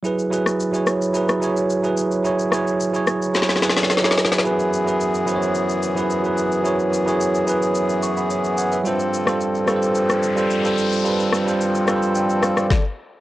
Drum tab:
SH |x-x-x-x-x-x-x-x-x-x-x-x-x-x-x-x-|x-x-x-x-x-x-x-x-x-x-x-x-x-x-x-x-|x-x-x-x-x-x-x-x-x-x-x-x-x-x-x-x-|x-x-x-x-x-x-x-x-x-x-x-x-x-x-x-x-|
SD |------r-----r-----r-------------|----r-------r---oooooooooooooooo|--------------------------------|--------------------------------|
BD |--------------------------------|--------------------------------|--------------------------------|--------------------------------|

SH |x-x-x-x-x-x-x-x-x-x-x-x-x-x-x-x-|x-x-x-x-x-x-x-x-x-x-x-x---------|
SD |------r-----r-----r-------------|----r-------r-------r-r-o-------|
BD |--------------------------------|------------------------o-------|